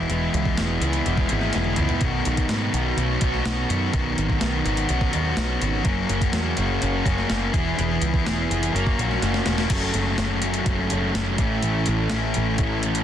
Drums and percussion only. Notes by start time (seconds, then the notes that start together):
0.10 closed hi-hat
0.34 closed hi-hat
0.45 kick
0.57 snare, closed hi-hat
0.82 closed hi-hat
0.93 closed hi-hat
1.06 closed hi-hat
1.17 kick
1.29 closed hi-hat
1.41 snare
1.53 snare, closed hi-hat
1.64 high tom
1.76 closed hi-hat, mid tom
1.89 floor tom
2.01 kick, closed hi-hat
2.25 closed hi-hat
2.37 kick, closed hi-hat
2.49 snare, closed hi-hat
2.74 closed hi-hat
2.98 closed hi-hat
3.21 kick, closed hi-hat
3.34 snare
3.46 snare, closed hi-hat
3.70 closed hi-hat
3.93 kick, closed hi-hat
4.18 closed hi-hat
4.30 kick
4.41 snare, closed hi-hat
4.66 closed hi-hat
4.77 closed hi-hat
4.89 closed hi-hat
5.01 kick
5.13 closed hi-hat
5.37 snare, closed hi-hat
5.62 closed hi-hat
5.85 kick, closed hi-hat
6.09 closed hi-hat
6.21 kick, closed hi-hat
6.33 snare, closed hi-hat
6.57 closed hi-hat
6.82 closed hi-hat
7.06 kick, closed hi-hat
7.18 snare
7.30 snare, closed hi-hat
7.54 kick, closed hi-hat
7.79 closed hi-hat
8.02 closed hi-hat
8.14 kick
8.27 snare, closed hi-hat
8.51 closed hi-hat
8.63 closed hi-hat
8.76 closed hi-hat
8.87 kick
8.99 closed hi-hat
9.11 snare
9.22 snare, closed hi-hat
9.34 snare
9.46 snare, closed hi-hat
9.58 snare
9.70 kick, closed hi-hat, crash
9.94 closed hi-hat
10.18 snare, closed hi-hat
10.42 closed hi-hat
10.54 closed hi-hat
10.66 kick, closed hi-hat
10.90 closed hi-hat
11.15 snare, closed hi-hat
11.38 kick, closed hi-hat
11.63 closed hi-hat
11.86 closed hi-hat
12.10 snare, closed hi-hat
12.34 closed hi-hat
12.58 kick, closed hi-hat
12.83 closed hi-hat
12.95 closed hi-hat